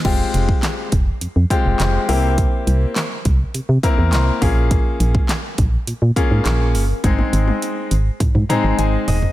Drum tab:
CC |x---------------|----------------|----------------|----------------|
HH |--x-x-x-x-x-x-o-|x-x-x-x-x-x-x-o-|x-x-x-x-x-x-x-o-|x-x-x-x-x-x-x-o-|
CP |----x-------x---|----x-------x---|----x-------x---|----------------|
SD |----o-------o---|----o-------o---|----o-------o---|----------------|
T1 |----------------|----------------|----------------|oo-o------------|
T2 |----------------|----------------|----------------|--------ooo-----|
FT |----------------|----------------|----------------|--------------oo|
BD |o--o--o---o-----|o-----o---o---o-|o--o--o---o-----|o-------o-------|